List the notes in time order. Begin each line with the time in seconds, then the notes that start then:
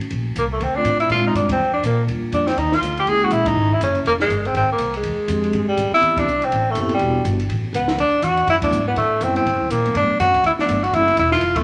0.01 muted upright bass stroke, ride
0.11 A#1, kick, ride
0.35 C2 A#3, kick, hi-hat pedal, ride
0.53 A3
0.60 D2 C4, kick, ride
0.76 A3 C4 D4 F4
0.84 A2, kick, hi-hat pedal, ride
1.00 E4, ride
1.09 A#2 G#3 C4 D4 F4, kick, ride
1.28 D#4
1.34 G2 D4, kick, hi-hat pedal, ride
1.49 C4, kick, ride
1.58 F2
1.73 D4
1.83 A#2 A#3, kick, hi-hat pedal, ride
2.07 D#2 G3 A#3 D4 F4, kick, ride
2.21 muted upright bass stroke
2.32 F2 D4, kick, hi-hat pedal, ride
2.47 C4, snare, ride
2.57 D#2 D#4, kick, ride
2.72 F4, snare
2.81 D2, kick, hi-hat pedal, ride
2.97 G4, ride
3.06 C#2 G#3 A#3 C#4 E4 G#4, kick, ride
3.24 F#4
3.30 A#1 E4, kick, hi-hat pedal, ride
3.45 D#4, kick, ride
3.54 G#1
3.73 E4
3.80 F#1 C#4, kick, hi-hat pedal, ride
3.95 ride
4.05 F1 A#3, kick, ride
4.20 G#3, snare
4.29 G1, kick, hi-hat pedal, ride
4.45 C4, ride
4.54 G#1 C4, kick, ride
4.68 muted upright bass stroke
4.72 A#3
4.78 C2, kick, hi-hat pedal, ride
4.94 G#3, ride
5.03 E2, kick, ride
5.17 muted upright bass stroke
5.27 F2 G#3 C4 D4 G4, kick, hi-hat pedal, ride
5.44 ride
5.53 G2, kick, ride
5.68 G3
5.76 G#2, kick, hi-hat pedal, ride
5.91 B3 C4 E4 G4, muted upright bass stroke
6.01 E2, kick, ride
6.17 D4, kick, ride
6.25 C2, hi-hat pedal
6.42 C4, ride
6.51 A1, kick, ride
6.71 F#1 A3 B3
6.75 C4 E4 G4, kick, hi-hat pedal, ride
6.81 A3
6.89 ride
6.94 G3
6.98 E1 B3 D4 F#4, kick, ride
7.24 G1, kick, hi-hat pedal, ride
7.40 ride
7.49 A1, kick, ride
7.73 C#2 B3, kick, hi-hat pedal, ride
7.88 snare
7.97 D2 D4, kick, ride
8.11 muted upright bass stroke
8.22 E2 F#4, kick, hi-hat pedal, ride
8.37 ride
8.47 F#2 E4, kick, ride
8.61 F#3 A3 B3 D4 E4, kick, ride
8.71 G#2, hi-hat pedal
8.88 B3
8.96 A2 A3, kick, ride
9.21 F#2 G3 B3 C4 E4, kick, hi-hat pedal, ride
9.36 C4, ride
9.45 G#2, kick, ride
9.53 F#2
9.61 D#2
9.70 A#2 A#3, kick, hi-hat pedal, ride
9.85 F#3 A3 B3 D4, ride
9.95 G2 D4, kick, ride
10.09 muted upright bass stroke
10.19 F#2 F#4, kick, hi-hat pedal, ride
10.34 kick, ride
10.44 D2 E4, kick, ride
10.58 F#3 A3 B3 D4, muted upright bass stroke, snare
10.68 G1, kick, hi-hat pedal, ride
10.84 F#4, ride
10.92 F#1 F#3 A3 C4 E4, kick, ride
11.08 ride
11.17 E1 E4, kick, hi-hat pedal, ride
11.32 F4, snare
11.41 F1, kick, ride
11.55 A3 B3 C4 D#4, kick, ride